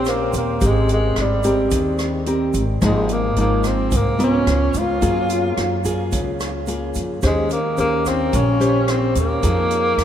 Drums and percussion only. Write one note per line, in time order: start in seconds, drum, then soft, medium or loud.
0.05 cross-stick medium
0.05 closed hi-hat soft
0.05 shaker soft
0.33 kick soft
0.33 closed hi-hat soft
0.33 shaker medium
0.61 kick medium
0.61 closed hi-hat soft
0.61 shaker medium
0.89 closed hi-hat soft
0.89 shaker soft
1.16 cross-stick medium
1.16 closed hi-hat soft
1.43 kick soft
1.43 closed hi-hat soft
1.43 shaker medium
1.71 kick medium
1.71 closed hi-hat medium
1.71 shaker medium
1.99 cross-stick medium
1.99 closed hi-hat soft
1.99 shaker soft
2.26 closed hi-hat soft
2.54 kick soft
2.54 closed hi-hat soft
2.54 shaker medium
2.82 kick soft
2.82 cross-stick medium
2.82 closed hi-hat soft
2.82 shaker medium
3.09 closed hi-hat soft
3.09 shaker soft
3.36 closed hi-hat soft
3.64 kick soft
3.64 cross-stick soft
3.64 closed hi-hat soft
3.64 shaker medium
3.91 kick medium
3.91 closed hi-hat medium
3.91 shaker medium
4.20 closed hi-hat soft
4.20 shaker soft
4.47 cross-stick medium
4.47 closed hi-hat soft
4.74 kick soft
4.74 closed hi-hat soft
4.74 shaker medium
5.02 kick medium
5.02 closed hi-hat soft
5.02 shaker medium
5.29 closed hi-hat soft
5.29 shaker soft
5.57 cross-stick medium
5.57 closed hi-hat soft
5.85 kick soft
5.85 closed hi-hat soft
5.85 shaker medium
6.12 kick medium
6.12 closed hi-hat medium
6.12 shaker medium
6.40 cross-stick medium
6.40 closed hi-hat soft
6.40 shaker soft
6.67 closed hi-hat soft
6.67 shaker soft
6.94 kick soft
6.94 closed hi-hat soft
6.94 shaker medium
7.22 kick soft
7.22 cross-stick medium
7.22 closed hi-hat soft
7.22 shaker medium
7.50 closed hi-hat soft
7.50 shaker soft
7.77 closed hi-hat soft
7.77 shaker soft
8.06 kick soft
8.06 cross-stick soft
8.06 closed hi-hat soft
8.06 shaker medium
8.33 kick medium
8.33 closed hi-hat medium
8.33 shaker medium
8.61 closed hi-hat soft
8.61 shaker soft
8.88 cross-stick medium
8.88 closed hi-hat soft
9.15 kick soft
9.15 closed hi-hat soft
9.15 shaker medium
9.43 kick medium
9.43 closed hi-hat medium
9.43 shaker medium
9.71 closed hi-hat soft
9.71 shaker soft
9.98 cross-stick medium
9.98 closed hi-hat soft